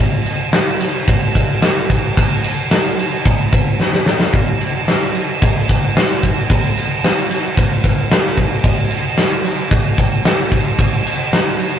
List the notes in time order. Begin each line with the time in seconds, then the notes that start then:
0.26 crash
0.53 snare, crash
0.81 snare, crash
1.07 kick, crash
1.35 kick, crash
1.62 snare, crash
1.90 kick, crash
2.17 kick, crash
2.44 crash
2.71 snare, crash
2.99 crash
3.25 kick, crash
3.52 kick, crash
3.80 snare
3.93 snare
4.06 snare
4.20 snare
4.32 kick, crash
4.61 crash
4.88 snare, crash
5.15 crash
5.42 kick, crash
5.69 kick, crash
5.97 snare, crash
6.23 kick, crash
6.49 kick, crash
6.77 crash
7.04 snare, crash
7.31 snare, crash
7.57 kick, crash
7.84 kick, crash
8.11 snare, crash
8.37 kick, crash
8.64 kick, crash
8.91 crash
9.18 snare, crash
9.45 snare, crash
9.71 kick, crash
9.98 kick, crash
10.25 snare, crash
10.52 kick, crash
10.79 kick, crash
11.06 crash
11.33 snare, crash
11.60 crash